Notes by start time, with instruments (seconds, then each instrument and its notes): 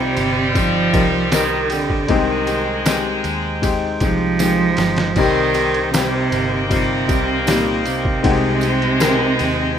Already playing: fingered electric bass C2, upright piano C3 G3 C4 D#4 F4 G4, cello C3, nylon-string guitar D#3 C4 D#4 G4, french horn section G3, tonewheel organ G4 C5 D#5 G5
0.17 fingered electric bass G1, ride, tambourine
0.54 cello F3, upright piano G3 C4 D#4 G4, kick, ride, tambourine
0.93 fingered electric bass C2, upright piano G3 C4 D#4 A#4, nylon-string guitar C4 D#4 G4, kick, ride, tambourine
1.32 nylon-string guitar D#3 C4 D#4 G4, cello D#3, upright piano G3 C4 A#4 D#5, snare, ride, tambourine
1.70 cello D3, nylon-string guitar C4 G4, ride, tambourine
1.90 kick
2.08 fingered electric bass C2, nylon-string guitar C3 D#3 G#3 D#4 G4, upright piano C3 G#3 C4 D#4 G4, cello D#3, tonewheel organ G#3 D#4, french horn section G#3, kick, ride
2.47 nylon-string guitar G#3 D#4 G4, ride, tambourine
2.86 nylon-string guitar D#3 G#3 D#4 G4, upright piano G#3 C4 D#4 G4, snare, ride, tambourine
3.24 fingered electric bass D#2, ride, tambourine
3.62 upright piano G#3 C4 D#4 G4, kick, ride, tambourine
4.00 fingered electric bass C2, cello F3, upright piano G#3 C4 D#4 G4, nylon-string guitar G#3 D#4 G4, kick, ride, tambourine
4.39 nylon-string guitar D#3 G#3 D#4 G4, upright piano G#3 C4 D#4 G4, snare, ride, tambourine
4.77 fingered electric bass G1, nylon-string guitar G#3 D#4 G4, snare, ride, tambourine
4.96 snare, ride
5.16 fingered electric bass C2, nylon-string guitar C3 D#3 C4 D#4 G4, upright piano C3 G3 C4 D#4 G4, cello D#3, french horn section C4, tonewheel organ G4 D#5 G5, kick, crash, tambourine
5.54 nylon-string guitar C4 D#4 G4, ride, tambourine
5.74 ride
5.92 cello C3, nylon-string guitar D#3 C4 D#4 G4, upright piano G3 C4 D#4 G4, french horn section A#3, snare, ride, tambourine
6.32 fingered electric bass G1, ride, tambourine
6.69 cello C3, upright piano G3 C4 D#4 F4, kick, ride, tambourine
7.08 fingered electric bass C2, upright piano G3 C4 D#4 G4, nylon-string guitar C4 D#4 G4, kick, ride, tambourine
7.46 cello A#2, nylon-string guitar D#3 C4 D#4 G4, upright piano G3 C4 D#4 G4, snare, ride, tambourine
7.85 cello C3, nylon-string guitar C4 D#4 G4, ride, tambourine
8.05 kick
8.23 fingered electric bass C2, upright piano C3 G#3 C4 D#4 F#4, nylon-string guitar C3 D#3 G#3 D#4 G4, french horn section G#3, tonewheel organ G#3 C5, kick, ride
8.31 upright piano G4
8.61 nylon-string guitar G#3 D#4 G4, ride, tambourine
8.82 ride
9.00 nylon-string guitar D#3 G#3 D#4 G4, upright piano G#3 C4 D#4 A#4, snare, ride, tambourine
9.39 fingered electric bass D#2, ride, tambourine